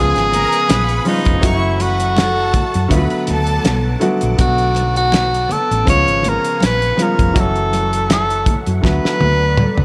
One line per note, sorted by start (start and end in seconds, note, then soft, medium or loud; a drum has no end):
0.00 0.11 C#2 loud
0.00 0.85 C#3 medium
0.00 0.85 F3 medium
0.00 0.86 G#3 medium
0.00 0.86 B3 medium
0.00 1.41 B3 medium
0.00 0.86 F4 medium
0.00 0.25 G#4 medium
0.00 1.08 G#4 loud
0.00 1.41 F5 medium
0.00 0.25 G#5 loud
0.00 1.41 G#5 medium
0.00 2.87 C#6 medium
0.16 0.44 G#1 medium
0.16 snare soft
0.16 closed hi-hat soft
0.31 0.62 A#4 loud
0.31 0.62 A#5 loud
0.31 closed hi-hat medium
0.31 low conga medium
0.52 closed hi-hat soft
0.68 0.98 A#1 loud
0.68 1.23 B4 medium
0.68 1.22 B5 loud
0.68 snare loud
0.68 closed hi-hat loud
0.68 high conga medium
0.89 closed hi-hat soft
1.04 1.32 C#3 medium
1.04 1.33 F3 medium
1.04 1.33 G#3 medium
1.04 1.33 B3 medium
1.04 1.34 F4 medium
1.04 open hi-hat medium
1.04 high conga medium
1.08 1.48 D#4 medium
1.25 1.40 F1 medium
1.25 kick medium
1.25 closed hi-hat medium
1.40 2.50 F#1 medium
1.40 2.47 E3 medium
1.40 2.48 F#3 medium
1.40 2.48 A3 medium
1.40 2.48 C#4 medium
1.40 2.49 F#4 medium
1.40 2.89 A4 medium
1.40 1.73 C#5 medium
1.40 2.89 E5 medium
1.40 5.83 F#5 medium
1.40 1.72 C#6 loud
1.40 kick loud
1.40 closed hi-hat loud
1.40 muted conga soft
1.47 1.83 E4 loud
1.80 3.29 F#4 loud
1.80 2.10 B4 medium
1.80 2.10 B5 loud
1.80 closed hi-hat medium
1.80 muted conga soft
2.00 closed hi-hat medium
2.17 2.87 A4 loud
2.17 2.87 A5 loud
2.17 snare loud
2.17 closed hi-hat medium
2.17 high conga medium
2.54 muted fingered electric bass stroke medium
2.54 kick loud
2.54 closed hi-hat medium
2.54 low conga medium
2.74 2.88 F#2 medium
2.74 closed hi-hat medium
2.88 3.06 D2 loud
2.88 3.80 D3 medium
2.88 3.80 F#3 medium
2.88 3.81 A3 medium
2.88 3.81 B3 medium
2.88 7.31 B3 medium
2.88 2.98 F4 medium
2.88 5.84 A5 medium
2.88 5.84 D6 medium
2.88 kick medium
2.88 closed hi-hat medium
2.88 muted conga soft
2.92 3.22 B4 medium
2.92 3.22 B5 loud
2.97 3.84 F#4 loud
3.10 closed hi-hat soft
3.27 3.58 D2 medium
3.27 3.99 A4 loud
3.27 3.99 A5 loud
3.27 closed hi-hat medium
3.27 low conga medium
3.47 closed hi-hat medium
3.64 3.94 B1 loud
3.64 snare loud
3.64 closed hi-hat loud
3.64 high conga medium
3.99 4.28 D3 medium
3.99 4.28 F#3 medium
3.99 4.28 A3 medium
3.99 4.29 B3 medium
3.99 4.29 F#4 loud
3.99 closed hi-hat medium
3.99 high conga medium
4.21 4.36 A#1 medium
4.21 closed hi-hat medium
4.37 5.46 B1 loud
4.37 5.43 D3 medium
4.37 5.44 F#3 medium
4.37 5.44 A3 medium
4.37 5.44 B3 medium
4.37 5.45 F#4 medium
4.37 kick loud
4.37 closed hi-hat medium
4.37 muted conga soft
4.41 4.93 F#4 loud
4.58 closed hi-hat soft
4.75 closed hi-hat medium
4.75 muted conga soft
4.96 5.54 F#4 loud
4.96 closed hi-hat medium
5.12 snare loud
5.12 closed hi-hat medium
5.12 high conga medium
5.34 closed hi-hat soft
5.49 5.88 A4 loud
5.49 muted fingered electric bass stroke soft
5.49 closed hi-hat medium
5.49 low conga medium
5.71 5.84 A1 medium
5.71 closed hi-hat medium
5.85 6.03 C#2 loud
5.85 6.76 C#3 medium
5.85 6.76 F3 medium
5.85 6.77 G#3 medium
5.85 6.77 B3 medium
5.85 6.78 F4 medium
5.85 7.34 F5 medium
5.85 7.34 G#5 medium
5.85 8.80 C#6 medium
5.85 kick medium
5.85 closed hi-hat medium
5.85 muted conga soft
5.90 6.30 C#5 loud
6.08 6.36 G#1 medium
6.08 closed hi-hat soft
6.23 closed hi-hat medium
6.23 low conga medium
6.29 6.64 A#4 loud
6.44 closed hi-hat medium
6.60 6.91 A#1 loud
6.60 snare loud
6.60 closed hi-hat loud
6.60 high conga medium
6.66 7.04 B4 loud
6.82 closed hi-hat soft
6.96 7.24 C#3 medium
6.96 7.25 F3 medium
6.96 7.25 G#3 medium
6.96 7.26 B3 medium
6.96 7.26 F4 medium
6.96 closed hi-hat medium
6.96 high conga medium
7.03 7.41 A#4 medium
7.19 7.32 F1 medium
7.19 kick medium
7.19 closed hi-hat medium
7.33 8.43 F#1 medium
7.33 8.39 E3 medium
7.33 8.40 F#3 medium
7.33 8.40 A3 medium
7.33 8.40 C#4 medium
7.33 8.41 F#4 medium
7.33 8.82 A4 medium
7.33 8.82 E5 medium
7.33 9.85 F#5 medium
7.33 kick loud
7.33 closed hi-hat loud
7.33 muted conga soft
7.39 8.11 A4 loud
7.56 closed hi-hat soft
7.73 closed hi-hat medium
7.73 muted conga soft
7.93 closed hi-hat medium
8.10 8.55 A4 loud
8.10 snare loud
8.10 closed hi-hat medium
8.10 high conga medium
8.30 closed hi-hat soft
8.46 muted fingered electric bass stroke medium
8.46 kick loud
8.46 closed hi-hat medium
8.46 low conga medium
8.66 8.80 F#2 medium
8.66 closed hi-hat soft
8.82 8.99 D2 loud
8.82 9.72 D3 medium
8.82 9.73 F#3 medium
8.82 9.73 A3 medium
8.82 9.74 B3 medium
8.82 9.74 F#4 medium
8.82 9.85 A4 medium
8.82 9.85 D5 medium
8.82 9.85 B5 medium
8.82 kick medium
8.82 snare medium
8.82 muted conga medium
8.87 9.85 B4 loud
9.05 muted fingered electric bass stroke soft
9.05 snare medium
9.21 9.65 D2 loud
9.21 high tom medium
9.21 low conga medium
9.57 mid tom loud
9.57 high conga medium
9.78 9.85 C#2 loud
9.78 mid tom medium